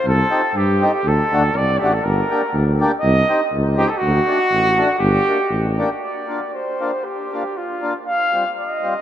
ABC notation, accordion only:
X:1
M:2/4
L:1/8
Q:"Swing" 1/4=119
K:Gm
V:1 name="Accordion"
z [CEG] z [CEG] | z [A,D^F] z [A,DF] | z [B,DG] z [B,DG] | z [CEG] z [CEG] |
z [A,D^F] z [A,DF] | z [B,DG] z [B,DG] | [K:Bb] z [B,DF] z [B,DF] | z [B,DF] z [B,DF] |
z [G,CF] z [G,CF] |]